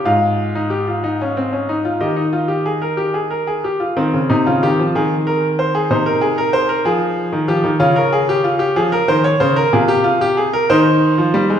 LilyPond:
<<
  \new Staff \with { instrumentName = "Grand piano" } { \time 12/8 \key aes \major \tempo 4. = 62 << { f''2. ees''2~ ees''8 r8 | r8 ees'16 f'16 g'8 aes'8 bes'8 c''16 aes'16 c''16 bes'16 aes'16 bes'16 c''16 bes'16 aes'4 g'8 | f'16 bes'16 aes'16 g'16 f'16 g'16 aes'16 bes'16 c''16 des''16 c''16 bes'16 aes'16 g'16 f'16 g'16 aes'16 bes'16 c''4. | } \\ { f'8. ees'16 g'16 f'16 ees'16 des'16 c'16 des'16 ees'16 f'16 g'16 ees'16 f'16 g'16 aes'16 bes'16 g'16 aes'16 bes'16 aes'16 g'16 f'16 | c'2. ees'2. | des'2. f'4. ees'4. | } >> }
  \new Staff \with { instrumentName = "Grand piano" } { \clef bass \time 12/8 \key aes \major aes,2. ees2~ ees8 r8 | ees16 des16 c16 des16 ees16 f16 ees4. c4. f8. ees16 f16 ees16 | des4. f8 ees8 des8 c4. ees8. f16 g16 aes16 | }
>>